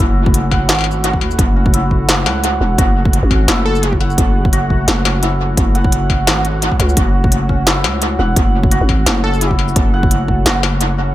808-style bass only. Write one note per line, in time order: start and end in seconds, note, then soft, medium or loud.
0.00 0.70 F#1 loud
0.69 1.23 G#1 loud
1.21 1.37 D#2 loud
1.39 2.27 F#1 loud
2.26 2.60 C#2 medium
2.61 2.77 E1 medium
2.78 3.22 F#1 loud
3.23 3.47 G#1 loud
3.48 4.17 F#1 loud
4.18 4.87 F#1 loud
4.88 5.56 F#1 medium
5.57 6.28 F#1 loud
6.27 6.70 G#1 loud
6.80 6.96 C#2 loud
6.97 7.86 F#1 loud
7.84 8.18 C#2 medium
8.19 8.35 E1 medium
8.36 8.80 F#1 loud
8.81 9.05 G#1 loud
9.06 9.75 F#1 loud
9.76 10.45 F#1 loud
10.46 11.15 F#1 medium